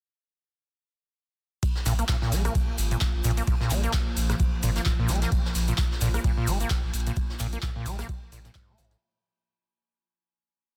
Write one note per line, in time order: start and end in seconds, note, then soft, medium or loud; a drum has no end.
1.62 8.97 F3 medium
1.62 8.97 A#3 medium
1.62 8.97 F4 medium
1.62 kick loud
1.62 closed hi-hat medium
1.62 ride medium
1.62 shaker soft
1.75 snare soft
1.85 2.03 A#1 medium
1.85 1.93 A#2 loud
1.85 snare soft
1.85 open hi-hat loud
1.85 ride medium
1.85 shaker medium
1.99 2.04 A#3 medium
1.99 closed hi-hat soft
1.99 shaker soft
2.08 2.16 A#2 medium
2.08 kick loud
2.08 snare loud
2.08 clap loud
2.08 closed hi-hat soft
2.08 ride medium
2.08 shaker soft
2.22 2.34 A#2 loud
2.22 snare soft
2.32 2.49 A#1 loud
2.32 2.43 G#3 medium
2.32 snare soft
2.32 open hi-hat loud
2.32 ride medium
2.32 shaker medium
2.45 2.53 A#3 medium
2.45 cross-stick medium
2.45 closed hi-hat soft
2.45 shaker medium
2.55 kick loud
2.55 closed hi-hat medium
2.55 ride medium
2.55 shaker soft
2.78 2.95 G#1 loud
2.78 open hi-hat loud
2.78 ride medium
2.78 shaker medium
2.91 2.97 A#2 medium
2.91 closed hi-hat soft
2.91 shaker soft
3.01 kick loud
3.01 snare loud
3.01 clap loud
3.01 closed hi-hat medium
3.01 shaker soft
3.14 3.21 A#1 medium
3.14 ride soft
3.24 3.41 A#1 loud
3.24 3.31 A#2 medium
3.24 open hi-hat loud
3.24 ride medium
3.24 shaker medium
3.37 3.43 A#3 medium
3.37 closed hi-hat medium
3.37 shaker soft
3.47 3.55 A#2 medium
3.47 kick loud
3.47 closed hi-hat medium
3.47 ride medium
3.47 shaker soft
3.61 3.72 A#2 medium
3.61 snare medium
3.70 3.87 A#1 medium
3.70 3.81 G#3 medium
3.70 clap soft
3.70 open hi-hat loud
3.70 ride medium
3.70 shaker medium
3.84 3.92 A#3 medium
3.84 closed hi-hat soft
3.84 shaker soft
3.93 kick loud
3.93 snare loud
3.93 clap loud
3.93 closed hi-hat soft
3.93 shaker soft
4.17 4.34 A#1 loud
4.17 open hi-hat loud
4.17 ride medium
4.17 shaker medium
4.30 4.35 A#2 medium
4.30 cross-stick medium
4.30 snare medium
4.30 closed hi-hat medium
4.30 shaker soft
4.40 kick loud
4.40 closed hi-hat medium
4.40 ride medium
4.40 shaker soft
4.63 4.80 G#1 loud
4.63 4.70 A#2 loud
4.63 open hi-hat loud
4.63 ride medium
4.63 shaker loud
4.76 4.81 A#3 medium
4.76 snare medium
4.76 closed hi-hat soft
4.76 shaker soft
4.86 4.93 A#2 medium
4.86 kick loud
4.86 snare loud
4.86 clap loud
4.86 closed hi-hat medium
4.86 ride medium
4.99 5.06 A#1 medium
4.99 5.10 A#2 loud
5.08 5.26 A#1 loud
5.08 5.20 G#3 medium
5.08 snare soft
5.08 open hi-hat loud
5.08 ride medium
5.08 shaker medium
5.15 closed hi-hat medium
5.22 5.30 A#3 medium
5.22 snare soft
5.22 closed hi-hat medium
5.22 shaker medium
5.32 kick loud
5.32 closed hi-hat medium
5.32 ride medium
5.32 shaker soft
5.45 snare soft
5.55 5.72 A#1 medium
5.55 snare soft
5.55 open hi-hat loud
5.55 ride medium
5.55 shaker medium
5.68 5.74 A#2 medium
5.68 closed hi-hat soft
5.68 shaker soft
5.77 kick loud
5.77 snare loud
5.77 clap loud
5.77 closed hi-hat soft
5.77 shaker soft
5.91 snare medium
6.01 6.18 A#1 loud
6.01 6.08 A#2 loud
6.01 snare soft
6.01 open hi-hat loud
6.01 ride medium
6.01 shaker medium
6.14 6.20 A#3 medium
6.14 cross-stick medium
6.14 closed hi-hat soft
6.14 shaker medium
6.24 6.32 A#2 medium
6.24 kick loud
6.24 closed hi-hat medium
6.24 ride medium
6.24 shaker soft
6.37 6.49 A#2 medium
6.47 6.64 G#1 loud
6.47 6.58 G#3 medium
6.47 open hi-hat loud
6.47 ride medium
6.47 shaker medium
6.60 6.69 A#3 medium
6.60 closed hi-hat soft
6.60 shaker medium
6.70 kick loud
6.70 snare loud
6.70 clap loud
6.70 closed hi-hat medium
6.70 ride medium
6.70 shaker soft
6.84 6.90 A#1 medium
6.84 ride soft
6.93 7.10 A#1 loud
6.93 open hi-hat loud
6.93 ride medium
6.93 shaker medium
7.00 closed hi-hat medium
7.07 7.12 A#2 medium
7.07 closed hi-hat medium
7.07 shaker soft
7.16 kick loud
7.16 closed hi-hat medium
7.16 ride medium
7.16 shaker soft
7.30 snare medium
7.39 7.57 A#1 medium
7.39 7.47 A#2 loud
7.39 clap soft
7.39 open hi-hat loud
7.39 ride medium
7.39 shaker loud
7.53 7.58 A#3 medium
7.53 closed hi-hat soft
7.53 shaker soft
7.62 7.70 A#2 medium
7.62 kick loud
7.62 snare loud
7.62 clap loud
7.62 closed hi-hat soft
7.62 ride medium
7.62 shaker soft
7.76 7.87 A#2 loud
7.86 8.03 A#1 loud
7.86 7.97 G#3 medium
7.86 open hi-hat loud
7.86 ride medium
7.86 shaker medium
7.99 8.07 A#3 medium
7.99 cross-stick medium
7.99 snare soft
7.99 closed hi-hat soft
7.99 shaker medium
8.09 kick loud
8.09 closed hi-hat medium
8.09 ride medium
8.09 shaker soft
8.32 8.49 A#1 medium
8.32 8.39 A#2 medium
8.32 open hi-hat loud
8.32 ride medium
8.32 shaker loud
8.44 8.51 A#2 medium
8.44 snare medium
8.44 closed hi-hat medium
8.44 shaker soft
8.55 8.70 G#2 medium
8.55 kick loud
8.55 snare loud
8.55 clap loud
8.55 closed hi-hat medium
8.55 shaker soft
8.68 8.75 A#2 loud
8.68 8.80 A#3 loud
8.78 8.95 A#1 loud
8.78 8.93 G#2 medium
8.78 snare soft
8.78 open hi-hat loud
8.78 ride medium
8.78 shaker medium
8.85 closed hi-hat medium
8.90 8.97 A#2 medium
8.90 snare medium
8.90 closed hi-hat medium
8.90 shaker soft